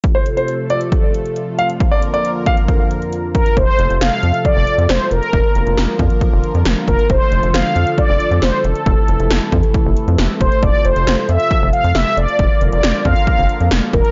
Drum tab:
HH |x-xxx-xxx-xxx-xx|x-xxx-xxx-xxx-xx|x-xxx-xxx-xxx-xx|x-xxx-xxx-xxx-xx|
SD |----------------|----------------|----o-------o---|----o-------o---|
BD |o-------o-------|o-----o-o-----o-|o-------o-------|o-----o-o-----o-|

HH |x-xxx-xxx-xxx-xx|x-xxx-xxx-xxx-xx|x-xxx-xxx-xxx-xx|x-xxx-xxx-xxx-xx|
SD |----o-------o---|----o-------o---|----o-------o---|----o-------o---|
BD |o-------o-------|o-----o-o-----o-|o-------o-------|o-----o-o-----o-|